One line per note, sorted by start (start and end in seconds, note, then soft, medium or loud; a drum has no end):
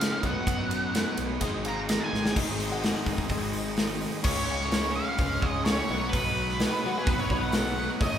0.00 0.21 C#3 medium
0.00 0.22 C#3 medium
0.00 0.22 F3 medium
0.00 0.22 G#3 medium
0.00 0.22 C#4 medium
0.00 0.23 C#4 loud
0.00 0.20 C#4 medium
0.00 0.22 F4 medium
0.00 0.23 F4 medium
0.00 0.22 G#4 medium
0.00 0.23 G#4 medium
0.00 0.24 C5 medium
0.00 0.22 F5 medium
0.00 snare loud
0.00 ride loud
0.20 0.33 B1 medium
0.20 0.43 B2 medium
0.20 0.44 F#3 medium
0.20 0.46 B3 medium
0.20 0.47 D#4 loud
0.20 0.99 F#4 medium
0.20 0.99 B4 medium
0.20 0.99 D#5 medium
0.20 kick medium
0.20 ride medium
0.25 1.41 D#4 medium
0.25 1.42 F#4 medium
0.25 1.42 B4 medium
0.25 1.41 D#5 medium
0.25 1.17 F#5 medium
0.45 1.03 F#2 loud
0.45 0.91 B2 medium
0.45 0.71 F#3 medium
0.45 0.69 B3 medium
0.45 0.68 D#4 loud
0.45 kick loud
0.45 ride medium
0.69 0.92 F#3 medium
0.69 0.93 B3 medium
0.69 0.95 D#4 medium
0.69 ride medium
0.93 1.40 B2 loud
0.93 1.19 F#3 loud
0.93 1.17 B3 loud
0.93 1.16 D#4 loud
0.93 snare loud
0.93 ride medium
1.17 1.37 B1 loud
1.17 1.41 F#3 medium
1.17 1.41 B3 medium
1.17 1.40 D#4 medium
1.17 ride medium
1.40 1.98 G#1 loud
1.40 1.89 G#2 medium
1.40 1.87 D#3 medium
1.40 1.66 G#3 loud
1.40 1.64 C4 medium
1.40 2.34 D#4 medium
1.40 1.63 D#4 medium
1.40 1.60 G#4 medium
1.40 2.35 G#4 medium
1.40 1.60 C5 medium
1.40 2.34 C5 medium
1.40 1.61 D#5 loud
1.40 2.35 D#5 medium
1.40 kick medium
1.40 ride loud
1.64 1.88 G#3 medium
1.64 1.88 C4 medium
1.64 1.89 D#4 medium
1.64 2.22 G#4 medium
1.64 2.22 C5 medium
1.64 2.22 F5 medium
1.64 ride medium
1.68 1.78 A#5 medium
1.88 2.35 D#3 medium
1.88 2.35 G#3 medium
1.88 2.35 C4 medium
1.88 2.36 D#4 medium
1.88 2.01 A#5 loud
1.88 snare loud
1.88 ride loud
2.00 2.09 G#5 medium
2.11 2.32 G#1 loud
2.11 2.35 G#5 loud
2.15 snare medium
2.26 snare loud
2.36 2.92 G#1 loud
2.36 3.06 G#2 medium
2.36 3.06 D#3 medium
2.36 3.06 G#3 medium
2.36 3.06 C4 medium
2.36 4.23 D#4 medium
2.36 2.65 D#4 medium
2.36 3.06 D#4 medium
2.36 4.23 G#4 medium
2.36 2.65 G#4 medium
2.36 3.06 G#4 medium
2.36 4.23 C5 medium
2.36 2.65 C5 medium
2.36 4.23 D#5 medium
2.36 2.65 D#5 medium
2.36 kick loud
2.36 crash loud
2.60 open hi-hat medium
2.71 3.19 D#4 medium
2.71 3.19 G#4 medium
2.71 3.19 C5 medium
2.71 3.19 F#5 loud
2.84 snare loud
2.84 open hi-hat medium
3.06 3.16 G#1 medium
3.06 3.77 D#3 medium
3.06 3.77 G#3 medium
3.06 3.77 C4 medium
3.06 3.77 D#4 medium
3.06 3.77 G#4 medium
3.06 kick medium
3.06 open hi-hat medium
3.10 3.76 G#2 medium
3.18 3.28 G#1 medium
3.18 kick medium
3.29 4.05 G#1 loud
3.29 4.06 D#4 medium
3.29 4.06 G#4 medium
3.29 4.06 C5 medium
3.29 4.06 D#5 medium
3.29 kick loud
3.29 open hi-hat loud
3.53 open hi-hat medium
3.77 4.23 G#2 medium
3.77 4.24 D#3 medium
3.77 4.24 G#3 medium
3.77 4.24 C4 medium
3.77 4.24 D#4 medium
3.77 4.25 G#4 medium
3.77 snare loud
3.77 open hi-hat medium
4.01 open hi-hat medium
4.23 5.00 C#2 loud
4.23 4.69 C#3 medium
4.23 4.69 F3 medium
4.23 4.99 C#4 medium
4.23 5.89 C#4 medium
4.23 5.00 F4 medium
4.23 5.89 F4 medium
4.23 5.00 G#4 medium
4.23 5.89 G#4 medium
4.23 5.00 C#5 medium
4.23 4.91 C#5 loud
4.23 kick loud
4.23 crash loud
4.27 4.70 G#3 medium
4.27 4.72 C#4 loud
4.27 5.88 C#5 medium
4.61 snare soft
4.70 4.94 C#3 loud
4.70 4.94 F3 loud
4.70 4.95 G#3 loud
4.70 4.96 C#4 medium
4.70 snare loud
4.70 open hi-hat medium
4.95 5.18 C#3 medium
4.95 5.18 F3 medium
4.95 5.19 G#3 medium
4.95 5.21 C#4 medium
4.95 5.44 F5 loud
5.18 5.38 C#2 loud
5.18 5.65 C#3 medium
5.18 5.65 F3 loud
5.18 5.67 G#3 medium
5.18 5.67 C#4 medium
5.18 kick loud
5.18 open hi-hat medium
5.42 5.80 C#2 medium
5.42 5.90 C#4 medium
5.42 5.90 F4 medium
5.42 5.90 G#4 medium
5.42 5.89 C#5 medium
5.42 5.64 D#5 medium
5.42 kick loud
5.65 5.89 C#3 medium
5.65 5.89 F3 medium
5.65 5.89 G#3 medium
5.65 5.91 C#4 loud
5.65 6.09 C#5 loud
5.65 snare loud
5.65 open hi-hat medium
5.89 6.65 B1 loud
5.89 6.13 B2 loud
5.89 6.13 F#3 loud
5.89 6.14 B3 loud
5.89 8.00 D#4 medium
5.89 6.65 D#4 medium
5.89 6.15 D#4 loud
5.89 6.65 F#4 medium
5.89 8.00 F#4 medium
5.89 8.00 B4 medium
5.89 6.66 B4 medium
5.89 7.98 C#5 medium
5.89 6.66 C#5 medium
6.09 7.49 B4 medium
6.13 6.59 B2 medium
6.13 6.60 F#3 loud
6.13 6.61 B3 loud
6.13 6.61 D#4 loud
6.13 kick loud
6.13 open hi-hat medium
6.49 snare soft
6.60 6.83 B2 loud
6.60 6.84 F#3 loud
6.60 6.84 B3 loud
6.60 6.84 D#4 loud
6.60 snare loud
6.60 open hi-hat medium
6.84 7.06 B2 medium
6.84 7.06 F#3 medium
6.84 7.07 B3 medium
6.84 7.08 D#4 medium
6.84 6.97 F#4 loud
6.98 7.08 G#4 loud
7.07 7.26 B1 medium
7.07 7.53 B2 medium
7.07 7.53 F#3 loud
7.07 7.53 B3 medium
7.07 7.54 D#4 loud
7.07 7.20 B4 loud
7.07 kick loud
7.07 open hi-hat medium
7.20 7.42 C#5 medium
7.30 7.86 B1 medium
7.30 7.88 D#4 loud
7.30 7.88 F#4 medium
7.30 7.88 B4 medium
7.30 7.88 C#5 medium
7.30 kick medium
7.41 7.54 F#5 medium
7.52 7.77 B2 loud
7.52 7.78 F#3 loud
7.52 7.78 B3 medium
7.52 7.79 D#4 loud
7.52 7.89 F#5 loud
7.52 snare loud
7.52 open hi-hat medium
7.78 8.00 B2 medium
7.78 8.01 F#3 loud
7.78 8.01 B3 medium
7.78 8.01 D#4 medium
7.99 8.19 A1 loud
7.99 8.19 A2 medium
7.99 8.19 E3 medium
7.99 8.19 A3 loud
7.99 8.19 C#4 medium
7.99 8.19 C#4 loud
7.99 8.19 E4 medium
7.99 8.19 A4 medium
7.99 8.19 C#5 medium
7.99 8.19 D#5 loud
7.99 kick loud
7.99 open hi-hat medium
8.03 8.19 E4 loud